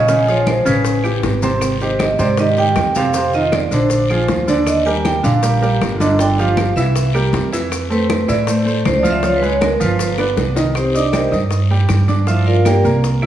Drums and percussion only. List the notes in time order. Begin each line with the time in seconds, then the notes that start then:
0.09 high bongo, high conga, long guiro, maracas
0.27 high bongo, high conga, maracas
0.47 high bongo, high conga, short guiro, claves, maracas
0.66 high bongo, high conga, short guiro, maracas
0.85 high bongo, high conga, long guiro, maracas
1.04 high conga, claves, maracas
1.23 high bongo, low bongo, high conga, short guiro, maracas
1.42 high bongo, high conga, short guiro, maracas
1.61 high bongo, high conga, long guiro, claves, maracas
1.81 high bongo, high conga, maracas
1.99 high bongo, high conga, short guiro, claves, maracas
2.19 high bongo, high conga, short guiro, maracas
2.37 high bongo, high conga, long guiro, maracas
2.57 high conga, maracas
2.76 high bongo, low bongo, high conga, short guiro, claves, maracas
2.95 high bongo, high conga, short guiro, maracas
3.14 high bongo, high conga, long guiro, maracas
3.33 high bongo, high conga, maracas
3.52 high bongo, high conga, short guiro, claves, maracas
3.71 high bongo, high conga, short guiro, maracas
3.90 high bongo, high conga, long guiro, maracas
4.10 high conga, claves, maracas
4.28 high bongo, low bongo, high conga, short guiro, maracas
4.47 high bongo, high conga, short guiro, maracas
4.66 high bongo, high conga, long guiro, claves, maracas
4.86 high bongo, high conga, maracas
5.05 high bongo, high conga, short guiro, claves, maracas
5.24 high bongo, high conga, short guiro, maracas
5.43 high bongo, high conga, long guiro, maracas
5.63 high conga, maracas
5.81 high bongo, low bongo, high conga, short guiro, claves, maracas
6.00 high bongo, high conga, short guiro, maracas
6.19 high bongo, high conga, long guiro, maracas
6.38 high bongo, high conga, maracas
6.57 high bongo, high conga, short guiro, claves, maracas
6.76 high bongo, high conga, short guiro, maracas
6.95 high bongo, high conga, long guiro, maracas
7.14 high conga, claves, maracas
7.33 high bongo, low bongo, high conga, short guiro, maracas
7.53 high bongo, short guiro, maracas
7.71 high bongo, high conga, long guiro, claves, maracas
7.91 high bongo, high conga, maracas
8.10 high bongo, high conga, short guiro, claves, maracas
8.29 high bongo, high conga, short guiro, maracas
8.47 high bongo, high conga, long guiro, maracas
8.67 high conga, maracas
8.85 high bongo, low bongo, high conga, short guiro, claves, maracas
9.04 high bongo, high conga, short guiro, maracas
9.23 high bongo, high conga, long guiro, maracas
9.42 high bongo, high conga, maracas
9.61 high bongo, high conga, short guiro, claves, maracas
9.81 high bongo, high conga, short guiro, maracas
9.99 high bongo, high conga, long guiro, maracas
10.18 high bongo, high conga, claves, maracas
10.37 high bongo, high conga, short guiro, maracas
10.56 low bongo, short guiro, maracas
10.75 high bongo, high conga, long guiro, claves, maracas
10.94 high bongo, high conga, maracas
11.13 high bongo, high conga, short guiro, claves, maracas
11.32 high bongo, high conga, short guiro, maracas
11.51 high bongo, high conga, long guiro, maracas
11.71 high conga
11.89 high bongo, low bongo, high conga, short guiro, claves, maracas
12.08 high bongo, high conga, short guiro, maracas
12.27 high bongo, high conga, long guiro, maracas
12.47 high bongo, high conga
12.65 high bongo, high conga, short guiro, claves, maracas
12.84 high conga, short guiro, maracas
13.04 high bongo, high conga, long guiro, maracas
13.22 high conga, claves